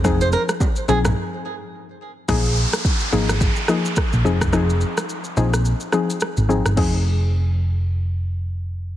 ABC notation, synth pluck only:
X:1
M:4/4
L:1/16
Q:"Swing 16ths" 1/4=107
K:Fm
V:1 name="Synth pluck"
[F,CEA]4 z2 [F,CEA] z8 z | [F,B,EA]4 z2 [F,B,EA] z3 [F,B,EA] z3 [F,CEA]2 | [F,CEA]4 z2 [F,CEA] z3 [F,CEA] z3 [F,CEA]2 | [F,CEA]16 |]